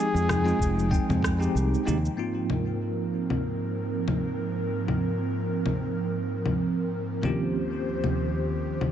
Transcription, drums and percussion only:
0.16 shaker
0.29 cross-stick, low conga, shaker
0.48 shaker
0.59 kick, shaker
0.79 shaker
0.91 kick, shaker
1.10 low conga, shaker
1.22 kick, cross-stick, shaker
1.42 shaker
1.57 shaker
1.74 shaker
1.87 low conga, shaker
2.05 shaker
2.50 low conga
3.30 low conga
4.08 low conga
4.88 low conga
5.66 low conga
6.46 low conga
7.23 low conga
8.04 low conga
8.81 low conga

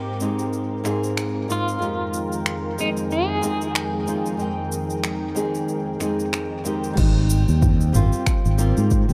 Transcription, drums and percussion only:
0.20 cabasa
0.39 cabasa
0.53 cabasa
0.85 finger snap, cabasa
1.04 cabasa
1.17 finger snap, cabasa
1.50 cabasa
1.68 cabasa
1.82 cabasa
2.13 cabasa
2.32 cabasa
2.46 finger snap, cabasa
2.78 cabasa
2.97 cabasa
3.11 cabasa
3.43 cabasa
3.61 cabasa
3.75 finger snap, cabasa
4.07 cabasa
4.26 cabasa
4.39 cabasa
4.72 cabasa
4.90 cabasa
5.04 finger snap, cabasa
5.36 cabasa
5.55 cabasa
5.68 cabasa
6.00 finger snap, cabasa
6.20 cabasa
6.33 finger snap, cabasa
6.65 cabasa
6.84 cabasa
6.97 kick, crash, cabasa
7.30 cabasa
7.48 cabasa
7.62 kick, mid tom, cabasa
7.81 cabasa
7.94 mid tom, cabasa
8.13 cabasa
8.26 finger snap, kick, cabasa
8.45 cabasa
8.59 cabasa
8.77 cabasa
8.90 kick, cabasa
9.09 mid tom, cabasa

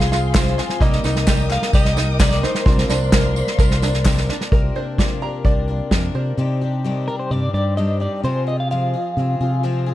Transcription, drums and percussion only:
0.00 snare
0.12 snare, tambourine
0.34 kick, snare, clap, tambourine
0.46 snare
0.58 snare, tambourine
0.69 snare
0.80 kick, snare, tambourine
0.93 snare
1.04 snare, tambourine
1.16 snare
1.27 kick, snare, clap, tambourine
1.50 snare, clap
1.62 snare
1.73 kick, snare, tambourine
1.85 snare
1.97 snare, tambourine
2.20 kick, snare, clap, tambourine
2.31 snare
2.43 snare, tambourine
2.55 snare
2.66 kick, snare, tambourine
2.78 snare
2.89 snare, tambourine
3.12 kick, snare, clap, tambourine
3.36 tambourine
3.47 snare
3.59 kick, snare, tambourine
3.71 snare
3.82 snare, tambourine
3.94 snare
4.05 kick, snare, clap, tambourine
4.17 snare
4.29 snare
4.41 snare
4.52 kick
4.98 kick, snare
5.45 kick
5.91 kick, snare

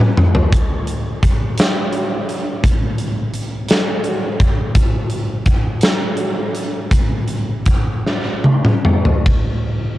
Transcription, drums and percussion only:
0.00 mid tom
0.17 mid tom
0.35 floor tom
0.53 kick, closed hi-hat
0.87 closed hi-hat
1.23 kick, closed hi-hat
1.58 snare, closed hi-hat
1.92 closed hi-hat
2.29 closed hi-hat
2.64 kick, closed hi-hat
2.98 closed hi-hat
3.34 closed hi-hat
3.69 snare, closed hi-hat
4.04 closed hi-hat
4.40 kick, closed hi-hat
4.75 kick, closed hi-hat
5.10 closed hi-hat
5.46 kick, closed hi-hat
5.81 snare, closed hi-hat
6.17 closed hi-hat
6.55 closed hi-hat
6.91 kick, closed hi-hat
7.28 closed hi-hat
7.66 kick, closed hi-hat
8.07 snare
8.44 high tom
8.65 mid tom
8.85 mid tom
9.05 floor tom
9.26 kick, ride

